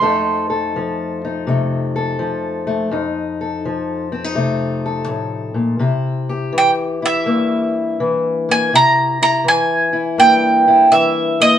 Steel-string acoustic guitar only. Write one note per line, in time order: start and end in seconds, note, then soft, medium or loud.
0.01 2.90 F2 medium
0.01 0.76 F3 medium
0.01 1.48 A3 medium
0.01 1.24 D#4 medium
0.01 0.49 A4 medium
0.50 1.95 A4 medium
0.76 2.18 F3 medium
1.25 2.91 D#4 medium
1.47 2.20 C3 medium
1.47 2.66 A3 medium
1.96 2.90 A4 medium
2.19 2.89 F3 medium
2.67 2.90 A3 medium
2.91 5.07 F2 medium
2.91 4.12 D#4 medium
3.41 4.84 A4 medium
3.65 5.80 F3 medium
4.12 4.24 C4 medium
4.24 5.80 D#4 soft
4.35 5.54 C3 medium
4.35 5.79 A3 medium
4.86 5.80 A4 medium
5.08 5.57 A2 medium
5.54 5.79 A#2 medium
5.79 6.54 C3 medium
5.79 7.02 E4 medium
6.29 7.75 G4 medium
6.53 7.99 E3 medium
7.02 8.70 E4 medium
7.26 8.70 G2 medium
7.26 8.47 A#3 medium
8.00 8.70 E3 medium
8.49 8.70 A#3 soft
8.73 9.46 C3 medium
8.73 9.21 E4 medium
9.22 9.92 E4 medium
9.44 10.90 E3 medium
9.93 10.66 E4 medium
10.18 11.59 G2 medium
10.18 11.39 A#3 medium
10.68 11.59 E4 medium
10.92 11.59 E3 medium
11.40 11.59 A#3 medium